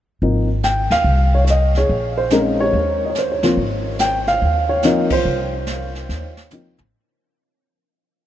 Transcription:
0.22 0.87 G#1 medium
0.22 0.47 F3 soft
0.22 0.47 A#3 soft
0.22 0.47 C4 soft
0.22 0.47 D#4 medium
0.22 brush sweep soft
0.63 0.92 G5 medium
0.63 snare medium
0.63 hi-hat pedal soft
0.90 1.04 D#2 medium
0.90 1.35 F5 loud
0.90 snare medium
0.90 ride medium
1.04 1.85 C2 medium
1.04 brush sweep soft
1.35 1.43 C#5 medium
1.45 1.48 C#5 medium
1.45 snare medium
1.45 hi-hat pedal soft
1.50 1.75 D#5 medium
1.75 2.57 G#4 medium
1.75 2.20 C#5 medium
1.75 snare soft
1.89 2.70 A#1 medium
1.89 brush sweep soft
2.18 2.31 C5 medium
2.30 2.74 G#3 medium
2.30 2.74 C4 soft
2.30 2.74 C#4 medium
2.30 2.74 D#4 medium
2.30 2.39 A#4 medium
2.30 snare medium
2.30 hi-hat pedal medium
2.60 3.40 G4 soft
2.60 3.02 C#5 medium
2.73 3.53 D#2 medium
2.73 brush sweep soft
3.05 3.11 D#5 medium
3.10 3.19 C#5 medium
3.15 3.31 C5 medium
3.15 snare medium
3.15 hi-hat pedal soft
3.32 3.44 C#5 medium
3.43 3.56 F3 medium
3.43 3.56 A#3 medium
3.43 3.57 C4 medium
3.43 3.56 F4 medium
3.43 snare medium
3.57 4.37 G#1 medium
3.57 brush sweep soft
3.99 4.28 G5 medium
3.99 snare medium
3.99 hi-hat pedal medium
4.27 4.67 F5 medium
4.27 snare soft
4.41 5.22 D#2 medium
4.41 brush sweep soft
4.69 5.13 C#5 medium
4.82 5.09 F3 medium
4.82 5.09 A#3 medium
4.82 5.09 C4 medium
4.82 5.09 D#4 medium
4.82 snare medium
4.82 hi-hat pedal medium
5.10 6.49 F4 soft
5.10 6.48 C5 medium
5.10 kick medium
5.10 ride medium
5.25 6.05 C2 medium
5.25 brush sweep soft
5.66 snare medium
5.66 hi-hat pedal medium
5.95 snare soft
6.09 6.75 D#2 medium
6.09 snare soft
6.37 snare medium
6.50 6.77 F3 soft
6.50 6.77 A#3 soft
6.50 6.77 C4 soft
6.50 6.77 D#4 medium
6.50 hi-hat pedal medium
6.50 mid tom medium
6.78 6.93 A1 medium
6.78 mid tom medium

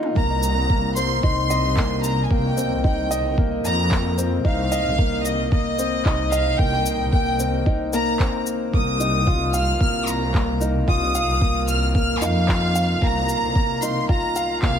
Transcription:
0.00 0.16 A#3 medium
0.00 0.18 D#4 loud
0.00 0.18 F4 loud
0.00 0.19 F5 medium
0.00 mid tom medium
0.16 1.16 C2 loud
0.16 0.42 A#3 medium
0.16 0.93 A#5 loud
0.16 kick loud
0.43 shaker medium
0.70 0.95 A#3 medium
0.70 kick loud
0.96 1.12 C4 medium
0.96 1.22 C6 loud
0.96 shaker medium
1.23 2.23 C2 medium
1.23 1.49 D#4 loud
1.23 2.00 C6 loud
1.23 kick loud
1.50 1.66 D#5 loud
1.50 shaker medium
1.77 2.03 A#3 medium
1.77 kick loud
1.77 clap medium
2.04 2.24 A#5 loud
2.04 shaker medium
2.24 2.31 G#5 medium
2.30 2.63 C2 loud
2.30 2.56 A#3 medium
2.30 2.83 G5 medium
2.30 kick loud
2.57 2.73 C4 medium
2.57 shaker medium
2.71 3.57 C2 medium
2.84 3.10 D#4 loud
2.84 3.34 G5 medium
2.84 kick loud
3.11 3.26 D#5 loud
3.11 shaker medium
3.38 3.63 A#3 medium
3.38 kick loud
3.65 4.38 F2 loud
3.65 4.15 A#5 loud
3.65 shaker medium
3.91 4.17 A#3 medium
3.91 kick loud
3.91 clap medium
4.18 4.33 C4 medium
4.18 shaker medium
4.45 4.78 C2 loud
4.45 4.70 D#4 loud
4.45 5.22 F5 loud
4.45 kick loud
4.72 4.87 D#5 loud
4.72 shaker medium
4.85 5.72 C2 medium
4.98 5.24 A#3 medium
4.98 kick loud
5.24 5.49 D#5 medium
5.24 shaker medium
5.51 5.77 A#3 medium
5.51 6.28 D#5 medium
5.51 kick loud
5.79 5.94 C4 medium
5.79 shaker medium
6.05 6.52 C2 medium
6.05 6.31 D#4 loud
6.05 kick loud
6.05 clap medium
6.31 6.48 D#5 loud
6.31 6.59 F5 loud
6.31 shaker medium
6.58 6.92 C2 loud
6.58 6.85 A#3 medium
6.58 7.11 G5 loud
6.58 kick loud
6.86 shaker medium
6.99 7.86 C2 medium
7.12 7.38 A#3 medium
7.12 7.62 G5 loud
7.12 kick loud
7.39 7.55 C4 medium
7.39 shaker medium
7.66 7.92 D#4 loud
7.66 kick loud
7.93 8.19 A#3 loud
7.93 8.43 A#5 loud
7.93 shaker medium
8.20 kick loud
8.20 clap medium
8.47 shaker medium
8.74 9.73 C2 loud
8.74 8.99 A#3 medium
8.74 9.50 D#6 loud
8.74 kick loud
9.00 9.15 D#4 medium
9.00 shaker medium
9.27 9.53 F4 loud
9.27 kick loud
9.54 9.69 F5 medium
9.54 9.80 F6 loud
9.54 shaker medium
9.80 10.80 C2 medium
9.80 10.06 A#3 medium
9.80 10.06 F6 loud
9.80 kick loud
10.07 10.61 A#5 medium
10.07 shaker medium
10.34 10.60 A#3 medium
10.34 kick loud
10.34 clap medium
10.61 10.76 D#4 medium
10.61 shaker medium
10.88 11.21 C2 loud
10.88 11.13 F4 loud
10.88 11.64 D#6 loud
10.88 kick loud
11.15 11.30 F5 loud
11.15 shaker medium
11.28 12.14 C2 medium
11.41 11.67 A#3 medium
11.41 kick loud
11.68 11.94 F6 loud
11.68 shaker medium
11.95 12.21 A#3 medium
11.95 12.20 F6 loud
11.95 kick loud
12.22 12.95 F2 loud
12.22 12.37 D#4 medium
12.22 13.02 F5 loud
12.22 shaker medium
12.48 12.74 F4 loud
12.48 kick loud
12.48 clap medium
12.75 12.91 F5 loud
12.75 shaker medium
13.02 13.35 C2 loud
13.02 13.28 A#3 medium
13.02 13.82 A#5 loud
13.02 kick loud
13.29 shaker medium
13.42 14.29 C2 medium
13.55 13.81 A#3 medium
13.55 kick loud
13.82 13.98 D#4 medium
13.82 14.09 C6 loud
13.82 shaker medium
14.09 14.35 F4 loud
14.09 14.59 A#5 loud
14.09 kick loud
14.36 14.51 F5 loud
14.36 shaker medium
14.62 14.79 C2 medium
14.62 14.79 A#3 medium
14.62 14.79 F5 loud
14.62 kick loud
14.62 clap medium

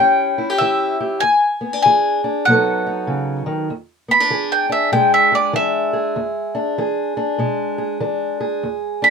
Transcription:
0.00 0.56 E3 medium
0.00 1.20 C#4 medium
0.00 0.37 E4 medium
0.00 0.38 G4 medium
0.00 0.61 G5 medium
0.38 0.50 E4 medium
0.50 0.99 G4 medium
0.58 1.18 E3 medium
0.58 1.20 E4 medium
0.58 1.23 E5 medium
1.00 1.20 G4 medium
1.20 1.80 E2 medium
1.20 1.81 G#5 medium
1.61 1.73 B3 medium
1.73 2.23 D4 soft
1.82 2.42 E3 medium
1.82 2.44 G#4 medium
1.82 2.45 G#5 medium
2.24 2.44 D4 medium
2.45 3.04 B2 medium
2.45 3.68 F#3 medium
2.45 3.68 B3 medium
2.45 3.42 F#5 medium
2.50 2.85 D#4 medium
2.50 3.69 A4 medium
2.87 3.67 D#4 medium
3.07 3.46 C#3 medium
3.46 3.69 D#3 medium
3.70 4.27 E2 medium
4.08 4.20 B3 medium
4.08 4.51 B5 medium
4.20 4.68 D4 soft
4.30 4.88 E3 medium
4.30 5.32 G#4 medium
4.52 4.72 G5 medium
4.69 5.53 D4 medium
4.69 4.92 E5 medium
4.92 5.49 B2 medium
4.92 7.39 G#3 medium
4.92 5.12 G5 medium
5.14 5.33 E5 medium
5.32 5.93 G#4 medium
5.32 5.54 D5 medium
5.53 6.11 E3 medium
5.53 6.19 D4 medium
5.53 6.74 E5 medium
5.93 6.58 G#4 medium
6.16 6.73 E2 medium
6.55 7.17 D4 medium
6.78 7.34 E3 medium
6.78 7.78 G#4 medium
7.17 8.00 D4 medium
7.38 7.95 B2 medium
7.38 9.10 G#3 medium
7.78 8.40 G#4 medium
8.00 8.57 E3 medium
8.00 8.66 D4 medium
8.40 9.05 G#4 medium
8.63 9.10 E2 medium
9.02 9.10 D4 medium
9.02 9.10 B5 medium

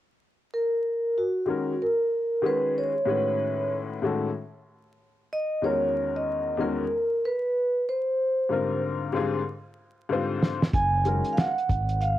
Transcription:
0.54 1.19 A#4 medium
1.18 1.83 F#4 medium
1.46 1.71 D#3 medium
1.46 1.72 G#3 medium
1.46 1.72 C#4 medium
1.46 1.73 F#4 soft
1.50 1.73 A#4 medium
1.82 2.47 A#4 medium
2.42 2.90 D#3 medium
2.42 2.91 G#3 medium
2.42 2.91 C#4 medium
2.42 2.92 F#4 medium
2.42 2.92 G#4 medium
2.46 2.78 B4 loud
2.78 3.68 C#5 loud
3.06 3.97 A2 medium
3.06 3.98 D#3 medium
3.06 3.98 G#3 medium
3.06 3.99 C#4 medium
3.06 3.99 F#4 medium
3.10 4.00 B4 medium
4.02 4.27 A2 medium
4.02 4.28 D#3 medium
4.02 4.28 G#3 medium
4.02 4.28 C#4 medium
4.02 4.29 F#4 medium
4.02 4.29 A4 medium
5.33 5.62 D#5 loud
5.62 6.53 E2 medium
5.62 6.53 D#3 medium
5.62 6.54 G#3 medium
5.62 6.54 C#4 medium
5.62 6.55 F#4 medium
5.62 6.55 A#4 medium
5.62 6.12 C#5 medium
6.16 6.61 D#5 medium
6.57 6.82 E2 medium
6.57 6.83 D#3 medium
6.57 6.83 G#3 medium
6.57 6.83 C#4 medium
6.57 6.84 F#4 medium
6.57 6.84 A#4 medium
6.57 7.25 A#4 medium
7.25 7.84 B4 medium
7.89 8.79 C5 medium
8.49 9.11 G#2 medium
8.49 9.12 D3 medium
8.49 9.12 G3 medium
8.49 9.13 C4 medium
8.49 9.14 F4 medium
8.49 9.42 A#4 medium
9.13 9.38 G#2 medium
9.13 9.38 D3 medium
9.13 9.38 G3 medium
9.13 9.39 C4 medium
9.13 9.39 F4 medium
9.13 9.40 G#4 medium
10.09 10.57 G#2 medium
10.09 10.57 D3 medium
10.09 10.58 G3 medium
10.09 10.58 C4 medium
10.09 10.58 F4 medium
10.09 10.59 C5 medium
10.43 snare medium
10.62 snare medium
10.73 11.21 F#1 loud
10.73 11.34 G#5 loud
10.73 kick loud
10.73 closed hi-hat medium
11.04 11.45 D#3 medium
11.04 11.45 G#3 medium
11.04 11.46 C#4 soft
11.04 11.46 F#4 soft
11.04 11.46 A#4 medium
11.04 closed hi-hat medium
11.25 closed hi-hat soft
11.33 11.38 F5 medium
11.37 12.03 F#5 medium
11.37 snare loud
11.37 closed hi-hat medium
11.58 closed hi-hat soft
11.69 12.19 G#1 medium
11.69 kick medium
11.69 closed hi-hat medium
11.89 closed hi-hat medium
12.01 12.19 F5 medium
12.01 closed hi-hat medium

